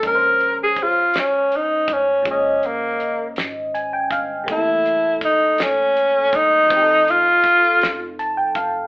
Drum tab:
HH |xxxxxx|xxxxxx|xxxxxx|xxxxxx|
SD |---o--|---o--|---o--|---o--|
BD |o-o--o|o----o|o-o--o|o-o--o|